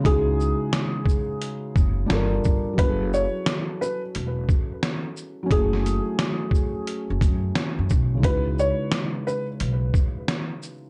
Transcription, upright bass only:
X:1
M:4/4
L:1/16
Q:"Swing 16ths" 1/4=88
K:C#m
V:1 name="Upright bass" clef=bass
C,,3 z6 z F,,,2 =G,,,2 G,,, z | F,,,3 z4 z E,,,2 z6 | F,,,3 z6 F,,, F,,2 z F,, B,,,2 | C,,3 z4 z B,,,2 z6 |]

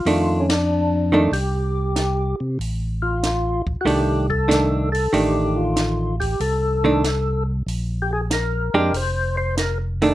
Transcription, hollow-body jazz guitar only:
X:1
M:4/4
L:1/8
Q:"Swing" 1/4=94
K:Fmix
V:1 name="Hollow-body jazz guitar"
[E,A,D] z2 [E,A,D] z4 | z4 [E,A,D] z [E,A,D] z | [E,A,D]3 z2 [E,A,D] z2 | z3 [_A,DG] z3 [E,=A,D] |]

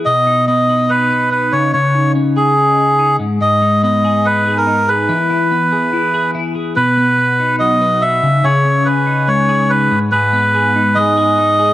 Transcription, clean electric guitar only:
X:1
M:4/4
L:1/8
Q:1/4=143
K:B
V:1 name="Clean electric guitar"
B,, D B, B D B D C, | C, D C G D G D G,, | G,, D B, G D G D G | E, E B, G E G E G |
[B,,B] B, B D F, B D C, | [C,G] C G D G, G D G,, | [G,,G] B, G D G, G D G |]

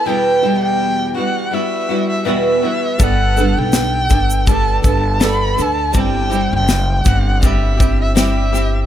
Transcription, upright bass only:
X:1
M:4/4
L:1/16
Q:"Swing 16ths" 1/4=81
K:G
V:1 name="Upright bass" clef=bass
z16 | G,,,3 B,,,3 G,,,4 G,,,4 D,,2 | G,,,3 F,,,3 G,,,8- G,,,2 |]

